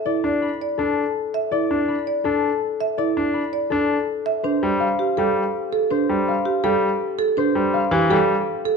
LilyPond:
<<
  \new Staff \with { instrumentName = "Harp" } { \time 4/4 \key g \mixolydian \tempo 4 = 164 <a' d'' b''>4 b''4 a'2 | d''4 b''4 a'2 | d''4 b''4 a'2 | c''4 f''4 g'2 |
c''4 f''4 g'2 | c''4 f''4 g'2 | }
  \new Staff \with { instrumentName = "Marimba" } { \time 4/4 \key g \mixolydian e'8 r4 d''8 r4. e''8 | e'8 r4 d''8 r4. e''8 | e'8 r4 d''8 r4. e''8 | d'8 r4 g'8 a'8 r4 a'8 |
d'8 r4 g'8 a'8 r4 a'8 | d'8 r4 g'8 a'8 r4 a'8 | }
  \new Staff \with { instrumentName = "Grand piano" } { \clef bass \time 4/4 \key g \mixolydian r8 d'8 r4 d'8 r4. | r8 d'8 r4 d'8 r4. | r8 d'8 r4 d'8 r4. | r8 g8 r4 g8 r4. |
r8 g8 r4 g8 r4. | r8 g8 r8 e8 g8 r4. | }
>>